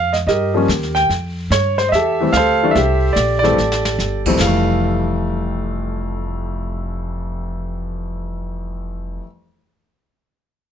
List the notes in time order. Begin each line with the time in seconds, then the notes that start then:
Already playing: F2 F5
0.13 D#5, snare
0.27 G2 G4 A#4 D#5, brush sweep, snare
0.54 F3 G3 A#3 C#4
0.68 D#2, snare, hi-hat pedal
0.83 snare
0.95 G5, snare
1.09 F2, brush sweep, snare
1.50 G2 C#5, snare, hi-hat pedal
1.78 C5, snare
1.89 E2 D#5 E5
1.93 G4 A4, brush sweep, snare
2.20 E3 G3 A3 C4
2.33 D2 F5, snare, hi-hat pedal
2.37 A4 C5
2.63 E3 G3 A3 D4
2.71 E5
2.75 C2 G4 A4, brush sweep, snare
3.13 A#1 D5, snare, hi-hat pedal
3.39 E3 D5
3.43 G3 A3 C4 G4 A4, snare
3.58 A1, snare
3.72 snare
3.85 snare
3.98 G1, snare, hi-hat pedal
4.26 F2 E3 G3 A3 C4, kick, crash
4.35 F2 E3
4.40 F1 G3 F5, snare, china
4.47 A3